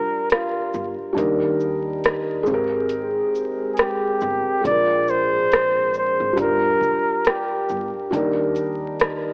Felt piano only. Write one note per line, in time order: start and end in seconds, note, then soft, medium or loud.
0.00 1.11 G3 medium
0.00 1.13 D4 medium
0.00 1.14 F4 medium
0.00 1.16 A#4 medium
1.13 2.45 G3 medium
1.13 2.46 D4 medium
1.13 2.47 D#4 medium
1.18 2.48 A#4 medium
2.43 4.58 G#3 loud
2.43 4.60 C4 medium
2.50 4.62 G4 medium
2.50 4.64 A#4 loud
4.61 6.33 G#3 medium
4.61 6.35 D4 medium
4.68 6.36 F4 medium
4.68 6.38 A#4 medium
6.33 8.06 G3 medium
6.33 8.08 D4 medium
6.40 8.09 F4 medium
6.40 8.11 A#4 medium
8.11 9.33 G3 medium
8.11 9.33 D4 medium
8.11 9.33 D#4 medium
8.16 9.33 A#4 medium